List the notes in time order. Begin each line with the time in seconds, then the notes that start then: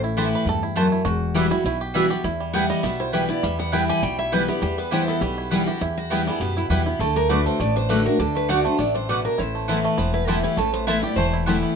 Already playing: A1 A2
0.04 E4
0.17 E3 A3 B3 E4 G4 C5 A5
0.35 B4
0.46 E2 G2 A4
0.63 E4
0.76 F#2 A3 B3 E4 C5 A5
0.92 E4
1.05 E1 E2 F#4
1.34 E3 G3 B3 E4 F#4 B4 E5
1.51 B3 E4 F#4
1.64 B1 B2 E4
1.81 G4
1.94 E3 G3 B3 E4 F#4 B4 E5
2.10 B3 F#4 G4
2.24 E2 E4
2.40 G3
2.53 E3 G3 B3 E4 B4 F#5 G5
2.70 G3 D#5
2.83 B1 B2 B3 E5
3.00 E4 C5
3.13 E3 G3 B3 E4 G4 B4 G5
3.29 B3 E4 D5
3.43 E2 G3 E5
3.59 B3 F#5
3.72 E3 G3 B3 E4 B4 G5
3.89 G4 G#5
4.03 B1 B2 G3 G5
4.19 E4 E5
4.32 E3 G3 B3 E4 G4 B4 G5
4.48 B3 E4 G4
4.62 E2 G3 G4
4.78 B3 B4
4.91 E3 G3 B3 E4 G4 B4 C5 G5
5.08 B3 A4
5.21 B1 B2 G3 G4
5.38 E4
5.51 E3 G3 B3 E4 B4 G5
5.66 B3 E4 F#4 G4
5.81 E2 E4
5.98 F#4
6.10 E3 G3 B3 E4 G4 B4 G5
6.27 G3 B3 E4 G#4
6.40 F#2 B2 B3 G4
6.57 E4
6.70 E2 E3 G3 B3 E4 G4 B4 G5
6.86 B3 E4
6.99 D2 D3 A3 A4
7.16 D4 A#4
7.29 D3 A3 D4 F#4 B4 D5 F#5
7.46 D4 C5
7.60 A1 A2 A3 D5
7.76 D4 C5
7.89 D3 A3 D4 F#4 B4 D5 F#5
8.06 D4 F#4 A#4
8.19 D2 D3 D4 A4
8.35 A3 B4
8.48 D3 A3 D4 F#4 D5 F#5
8.65 A3 D4 F#4 C5
8.79 A1 C3 D4 D5
8.95 D4 C5
9.09 B2 A3 D4 F#4 B4 D5 F#5
9.25 D4 A#4
9.38 A1 A2 E4 C5
9.55 A3
9.68 E3 A3 B3 E4 C5 A5
9.85 A3
9.98 E1 E3 B3 C5
10.14 E4 B4
10.27 E3 A3 B3 E4 G4 A4 C5 A5
10.44 E4 G4
10.57 A1 A2 A3 A4
10.73 B3 C5
10.87 E3 A3 B3 E4 C5 E5 A5
11.03 B3 E4 G4 D5
11.16 E1 E3 A3 C5
11.33 E4
11.46 E3 A3 B3 E4 G4 C5 A5
11.63 B3